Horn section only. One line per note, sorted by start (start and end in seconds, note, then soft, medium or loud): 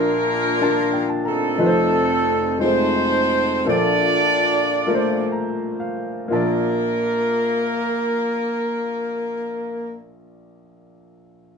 0.00 1.10 A#3 medium
0.00 1.10 D4 medium
0.00 1.10 F4 medium
0.00 1.10 A#4 medium
1.27 2.56 A3 medium
1.27 2.56 C4 medium
1.27 2.56 D#4 medium
1.27 2.56 A4 medium
2.60 3.67 C4 medium
2.60 3.63 D#4 medium
2.60 3.63 A4 medium
2.60 3.67 C5 medium
3.68 5.29 D4 medium
3.68 5.29 F4 medium
3.68 5.29 A4 medium
3.68 5.29 D5 loud
6.32 9.98 A#3 medium
6.32 9.98 A#4 medium